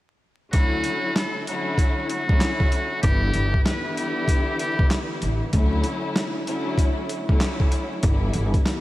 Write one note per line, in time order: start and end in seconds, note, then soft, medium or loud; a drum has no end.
0.52 0.82 D2 loud
0.52 1.41 D3 medium
0.52 1.41 F#3 medium
0.52 1.41 A3 medium
0.52 1.41 C#4 medium
0.52 1.41 E4 loud
0.52 1.12 F#4 loud
0.52 kick loud
0.52 closed hi-hat medium
0.84 closed hi-hat medium
1.16 1.44 A4 medium
1.16 snare loud
1.16 clap medium
1.16 closed hi-hat medium
1.47 2.21 D3 loud
1.47 2.21 F#3 medium
1.47 2.22 A3 medium
1.47 2.22 C#4 medium
1.47 2.22 E4 loud
1.47 2.06 F#4 medium
1.47 closed hi-hat medium
1.78 kick medium
1.78 closed hi-hat medium
2.09 2.99 F#4 medium
2.09 closed hi-hat medium
2.28 2.40 D2 medium
2.28 2.98 D3 medium
2.28 2.98 F#3 loud
2.28 2.98 A3 medium
2.28 2.99 C#4 medium
2.28 2.99 E4 loud
2.28 kick medium
2.41 snare loud
2.41 clap medium
2.41 closed hi-hat medium
2.60 kick medium
2.72 closed hi-hat medium
3.02 3.32 G1 loud
3.02 3.62 D3 loud
3.02 3.62 E3 loud
3.02 3.62 G3 medium
3.02 3.62 B3 medium
3.02 3.63 E4 loud
3.02 3.61 G4 loud
3.02 kick loud
3.02 closed hi-hat medium
3.34 3.53 G1 medium
3.34 closed hi-hat medium
3.54 kick medium
3.66 5.42 D3 loud
3.66 5.42 E3 loud
3.66 5.42 G3 medium
3.66 5.43 B3 medium
3.66 5.43 E4 loud
3.66 3.94 B4 medium
3.66 snare loud
3.66 clap medium
3.66 closed hi-hat loud
3.97 4.56 G4 medium
3.97 closed hi-hat medium
4.28 kick medium
4.28 closed hi-hat medium
4.59 4.88 G4 medium
4.59 closed hi-hat medium
4.79 4.90 B1 medium
4.79 kick medium
4.91 snare loud
4.91 clap medium
4.91 closed hi-hat loud
5.22 5.40 A1 medium
5.22 closed hi-hat medium
5.52 5.82 D2 loud
5.52 6.41 D3 loud
5.52 6.41 F#3 medium
5.52 6.41 A3 medium
5.52 6.41 C#4 medium
5.52 6.41 E4 loud
5.52 kick loud
5.52 closed hi-hat medium
5.84 closed hi-hat medium
6.16 snare loud
6.16 clap medium
6.16 closed hi-hat medium
6.47 7.21 D3 medium
6.47 7.21 F#3 medium
6.47 7.21 A3 medium
6.47 7.22 C#4 medium
6.47 7.22 E4 loud
6.47 closed hi-hat medium
6.78 kick medium
6.78 closed hi-hat medium
7.09 closed hi-hat medium
7.28 7.40 D2 medium
7.28 7.98 D3 medium
7.28 7.98 F#3 loud
7.28 7.98 A3 medium
7.28 7.99 C#4 medium
7.28 7.99 E4 loud
7.28 kick loud
7.41 snare loud
7.41 clap medium
7.41 closed hi-hat medium
7.60 kick medium
7.72 closed hi-hat medium
8.03 8.32 G1 loud
8.03 8.62 D3 loud
8.03 8.62 E3 medium
8.03 8.62 G3 medium
8.03 8.62 B3 medium
8.03 8.63 E4 loud
8.03 kick loud
8.03 closed hi-hat medium
8.33 8.53 G1 medium
8.33 closed hi-hat medium
8.54 kick medium
8.54 closed hi-hat medium
8.66 8.81 D3 loud
8.66 8.81 E3 medium
8.66 8.81 G3 loud
8.66 8.81 B3 loud
8.66 8.81 E4 loud
8.66 snare loud
8.66 clap medium
8.66 closed hi-hat loud